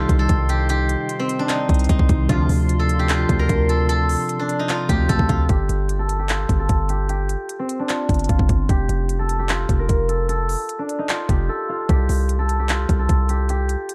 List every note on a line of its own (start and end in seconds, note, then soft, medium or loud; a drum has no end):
0.00 2.05 C3 medium
0.00 2.05 D#3 medium
0.00 2.06 G3 medium
0.00 0.89 D#4 medium
0.00 2.06 D#4 medium
0.00 2.26 D#4 medium
0.00 2.29 F4 medium
0.00 0.49 G4 medium
0.00 0.19 A4 medium
0.00 2.25 C5 medium
0.00 2.26 G5 medium
0.00 2.26 C6 medium
0.09 0.28 C2 loud
0.09 kick medium
0.09 closed hi-hat medium
0.19 2.39 A4 medium
0.29 0.96 C2 loud
0.29 kick loud
0.29 closed hi-hat medium
0.49 0.69 G4 medium
0.49 closed hi-hat medium
0.69 2.99 G4 loud
0.69 closed hi-hat medium
0.89 closed hi-hat medium
1.09 closed hi-hat medium
1.20 4.20 C4 medium
1.29 closed hi-hat medium
1.39 1.55 D4 medium
1.49 1.89 D#4 medium
1.49 clap loud
1.49 closed hi-hat medium
1.69 1.88 C2 loud
1.69 kick loud
1.69 closed hi-hat medium
1.74 closed hi-hat medium
1.79 closed hi-hat medium
1.84 closed hi-hat medium
1.89 1.99 C2 loud
1.89 4.45 D#4 medium
1.89 kick loud
1.89 closed hi-hat medium
1.99 2.09 C2 loud
1.99 kick medium
2.09 2.28 C2 loud
2.09 2.27 C3 medium
2.09 2.29 D#3 soft
2.09 2.29 G3 soft
2.09 2.30 D#4 medium
2.09 kick loud
2.09 closed hi-hat medium
2.28 2.48 D2 loud
2.28 4.85 C3 medium
2.28 2.46 C3 medium
2.28 2.46 D3 medium
2.28 4.85 F3 medium
2.28 2.46 F3 loud
2.28 4.85 C4 medium
2.28 4.86 D4 medium
2.28 3.09 F4 loud
2.28 5.46 F4 medium
2.28 5.46 D5 medium
2.28 5.46 A5 medium
2.28 5.46 C6 medium
2.28 kick loud
2.28 closed hi-hat medium
2.49 3.26 D2 loud
2.49 open hi-hat medium
2.69 closed hi-hat medium
2.79 3.45 A4 medium
2.89 closed hi-hat medium
2.99 4.89 G4 medium
3.09 4.69 F4 medium
3.09 clap loud
3.09 closed hi-hat medium
3.29 3.48 D2 loud
3.29 kick loud
3.29 closed hi-hat medium
3.39 3.75 A#4 medium
3.49 4.17 D2 loud
3.49 kick loud
3.49 closed hi-hat medium
3.69 3.89 A4 medium
3.69 closed hi-hat medium
3.89 5.09 A4 loud
3.89 closed hi-hat medium
4.09 open hi-hat medium
4.29 closed hi-hat medium
4.39 4.65 D4 medium
4.49 closed hi-hat medium
4.59 7.30 D#4 medium
4.69 5.29 F4 medium
4.69 clap loud
4.69 closed hi-hat medium
4.89 5.08 D2 loud
4.89 5.49 C3 soft
4.89 5.49 F3 soft
4.89 5.49 A3 soft
4.89 5.50 C4 medium
4.89 5.49 G4 medium
4.89 kick medium
4.89 closed hi-hat medium
5.09 5.19 D2 loud
5.09 5.99 A4 medium
5.09 kick loud
5.09 closed hi-hat medium
5.19 5.29 D2 loud
5.19 kick medium
5.29 5.48 D2 loud
5.29 6.29 F4 medium
5.29 kick loud
5.29 closed hi-hat medium
5.49 5.68 G1 loud
5.49 6.19 G4 loud
5.49 kick loud
5.49 closed hi-hat medium
5.69 6.46 G1 loud
5.69 closed hi-hat medium
5.89 closed hi-hat medium
5.99 6.59 A4 medium
6.09 closed hi-hat medium
6.19 6.89 G4 medium
6.29 7.89 F4 medium
6.29 clap loud
6.29 closed hi-hat medium
6.49 6.68 G1 loud
6.49 kick medium
6.49 closed hi-hat medium
6.59 8.79 A4 medium
6.69 7.36 G1 loud
6.69 kick medium
6.69 closed hi-hat medium
6.89 7.09 G4 medium
6.89 closed hi-hat medium
7.09 8.69 G4 loud
7.09 closed hi-hat medium
7.29 closed hi-hat medium
7.49 closed hi-hat medium
7.59 10.59 C4 medium
7.69 closed hi-hat medium
7.79 10.59 D4 medium
7.89 8.29 F4 medium
7.89 clap loud
7.89 closed hi-hat medium
8.09 8.28 G1 loud
8.09 kick medium
8.09 closed hi-hat medium
8.14 closed hi-hat medium
8.19 closed hi-hat medium
8.24 closed hi-hat medium
8.29 8.39 G1 loud
8.29 9.49 F4 medium
8.29 kick medium
8.29 closed hi-hat medium
8.39 8.49 G1 loud
8.39 kick medium
8.49 8.68 G1 loud
8.49 kick medium
8.49 closed hi-hat medium
8.69 8.88 F1 loud
8.69 9.39 G4 loud
8.69 kick loud
8.69 closed hi-hat medium
8.89 9.66 F1 loud
8.89 closed hi-hat medium
9.09 closed hi-hat medium
9.19 9.85 A4 medium
9.29 closed hi-hat medium
9.39 11.29 G4 medium
9.49 11.09 F4 medium
9.49 clap loud
9.49 closed hi-hat medium
9.69 9.88 F1 loud
9.69 kick medium
9.69 closed hi-hat medium
9.79 10.15 A#4 medium
9.89 10.56 F1 loud
9.89 kick medium
9.89 closed hi-hat medium
10.09 10.28 A4 medium
10.09 closed hi-hat medium
10.29 11.49 A4 loud
10.29 closed hi-hat medium
10.49 open hi-hat medium
10.69 closed hi-hat medium
10.79 11.05 D4 medium
10.89 closed hi-hat medium
10.99 13.69 D#4 medium
11.09 11.69 F4 medium
11.09 clap loud
11.09 closed hi-hat medium
11.29 11.49 F1 loud
11.29 11.89 G4 medium
11.29 kick medium
11.29 closed hi-hat medium
11.49 12.38 A4 medium
11.69 12.69 F4 medium
11.89 12.08 C2 loud
11.89 12.59 G4 loud
11.89 kick loud
11.89 closed hi-hat medium
12.09 12.86 C2 loud
12.09 open hi-hat medium
12.29 closed hi-hat medium
12.39 12.99 A4 medium
12.49 closed hi-hat medium
12.59 13.29 G4 medium
12.69 13.95 F4 medium
12.69 clap loud
12.69 closed hi-hat medium
12.89 13.08 C2 loud
12.89 kick medium
12.89 closed hi-hat medium
12.99 13.95 A4 medium
13.09 13.76 C2 loud
13.09 kick medium
13.09 closed hi-hat medium
13.29 13.49 G4 medium
13.29 closed hi-hat medium
13.49 13.95 G4 loud
13.49 closed hi-hat medium
13.69 closed hi-hat medium
13.89 closed hi-hat medium